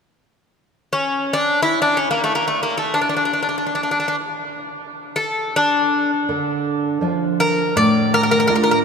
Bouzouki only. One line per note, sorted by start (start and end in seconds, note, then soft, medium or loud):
0.93 1.35 C#4 medium
1.33 1.62 D4 medium
1.62 1.81 E4 medium
1.82 1.97 D4 medium
1.97 2.10 C#4 medium
2.11 2.23 A#3 medium
2.24 2.35 A3 medium
2.35 2.47 A#3 medium
2.48 2.61 A3 medium
2.63 2.77 A#3 medium
2.77 2.93 A3 medium
2.94 3.00 D4 medium
3.01 3.08 D4 soft
3.09 3.15 D4 medium
3.17 3.24 D4 soft
3.25 3.32 D4 soft
3.33 3.41 D4 soft
3.42 3.48 D4 soft
3.49 3.57 D4 soft
3.58 3.65 D4 soft
3.66 3.74 D4 soft
3.75 3.82 D4 soft
3.83 3.90 D4 soft
3.91 3.98 D4 medium
4.00 4.07 D4 soft
4.08 4.15 D4 medium
5.16 5.57 A4 medium
5.56 6.10 D4 medium
7.40 7.74 A#4 medium
7.77 8.11 D5 medium
8.14 8.21 A#4 medium
8.23 8.30 A#4 medium
8.31 8.38 A#4 medium
8.40 8.46 A#4 medium
8.47 8.54 A#4 medium
8.56 8.62 A#4 medium
8.64 8.70 A#4 medium
8.71 8.78 A#4 medium